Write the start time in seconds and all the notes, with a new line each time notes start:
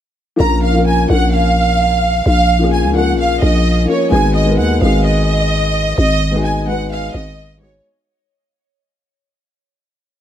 0.36 A#1 F3 A#3 C#4 F4 A#5
0.41 A#4
0.63 F5
0.73 F3 A#3 C#4 F4
0.78 A#4
0.86 G#5
1.08 A#1 F3 A#3 C#4 F4 F#5
1.13 A#4
1.33 F5
2.26 A#1 F5
2.59 F3 A#3 C#4 F4
2.64 G#4
2.72 G#5
2.84 C#2
2.93 F3 A#3 C#4 F4 F#5
2.98 A#4
3.13 A#1
3.19 F5
3.42 A#1 D#5
3.85 F3 A#3 C#4 F4 C#5
3.90 A#4
4.10 G#1 G#3 B3 D#4 F#4 G#5
4.14 G#4
4.35 D#5
4.45 G#3 B3 D#4 F#4
4.50 A#4
4.58 D#2 F#5
4.80 G#1 G#3 B3 D#4 F#4 F5
4.85 G#4
5.05 D#5
5.98 G#1 D#5
6.31 G#3 B3 D#4 F#4
6.36 G#4
6.44 G#5
6.66 G#3 B3 D#4 F#4 F#5
6.70 B4
6.91 F5
7.14 G#1 D#5
7.57 G#3 B3 D#4 F#4 C#5
7.62 G#4